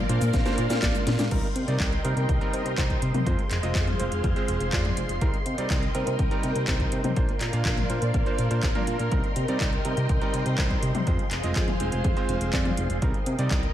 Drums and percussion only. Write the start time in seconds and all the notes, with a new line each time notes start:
0.09 closed hi-hat
0.21 closed hi-hat, cabasa
0.34 kick, snare, closed hi-hat, cabasa
0.46 snare, closed hi-hat, cabasa
0.58 closed hi-hat
0.70 snare, closed hi-hat, cabasa
0.82 kick, snare, clap, closed hi-hat, cabasa
0.95 closed hi-hat, cabasa
1.07 snare, closed hi-hat
1.19 snare, closed hi-hat, cabasa
1.31 kick, closed hi-hat, crash
1.43 closed hi-hat
1.56 closed hi-hat
1.68 closed hi-hat
1.80 kick, clap, closed hi-hat
1.92 closed hi-hat
2.05 closed hi-hat
2.17 closed hi-hat
2.29 kick, closed hi-hat
2.41 closed hi-hat
2.53 closed hi-hat
2.66 closed hi-hat
2.78 kick, clap, closed hi-hat
2.90 kick, closed hi-hat
3.02 closed hi-hat
3.14 closed hi-hat, high tom
3.26 kick, closed hi-hat
3.39 closed hi-hat
3.51 clap, closed hi-hat
3.63 closed hi-hat
3.75 kick, clap, closed hi-hat
3.87 closed hi-hat, high tom
4.00 closed hi-hat
4.12 closed hi-hat
4.24 kick, closed hi-hat
4.36 closed hi-hat
4.48 closed hi-hat
4.60 closed hi-hat
4.73 kick, clap, closed hi-hat
4.85 closed hi-hat, high tom
4.97 closed hi-hat
5.09 closed hi-hat
5.21 kick, closed hi-hat
5.34 closed hi-hat
5.46 closed hi-hat
5.58 closed hi-hat
5.70 kick, clap, closed hi-hat
5.83 closed hi-hat
5.95 closed hi-hat
6.07 closed hi-hat
6.19 kick, closed hi-hat
6.31 closed hi-hat
6.43 closed hi-hat
6.56 closed hi-hat
6.68 kick, clap, closed hi-hat
6.80 kick, closed hi-hat
6.92 closed hi-hat
7.04 closed hi-hat, high tom
7.16 kick, closed hi-hat
7.29 closed hi-hat
7.41 clap, closed hi-hat
7.53 closed hi-hat
7.65 kick, clap, closed hi-hat
7.78 closed hi-hat, high tom
7.90 closed hi-hat
8.02 closed hi-hat
8.14 kick, closed hi-hat
8.26 closed hi-hat
8.38 closed hi-hat
8.51 closed hi-hat
8.63 kick, clap, closed hi-hat
8.75 closed hi-hat, high tom
8.87 closed hi-hat
8.99 closed hi-hat
9.12 kick, closed hi-hat
9.24 closed hi-hat
9.36 closed hi-hat
9.48 closed hi-hat
9.61 kick, clap, closed hi-hat
9.73 closed hi-hat
9.85 closed hi-hat
9.97 closed hi-hat
10.09 kick, closed hi-hat
10.22 closed hi-hat
10.34 closed hi-hat
10.46 closed hi-hat
10.58 kick, clap, closed hi-hat
10.70 kick, closed hi-hat
10.83 closed hi-hat
10.95 closed hi-hat, high tom
11.07 kick, closed hi-hat
11.19 closed hi-hat
11.31 clap, closed hi-hat
11.43 closed hi-hat
11.56 kick, clap, closed hi-hat
11.68 closed hi-hat, high tom
11.80 closed hi-hat
11.92 closed hi-hat
12.04 kick, closed hi-hat
12.17 closed hi-hat
12.29 closed hi-hat
12.41 closed hi-hat
12.53 kick, clap, closed hi-hat
12.65 closed hi-hat, high tom
12.77 closed hi-hat
12.90 closed hi-hat
13.02 kick, closed hi-hat
13.14 closed hi-hat
13.26 closed hi-hat
13.39 closed hi-hat
13.51 kick, clap, closed hi-hat
13.63 closed hi-hat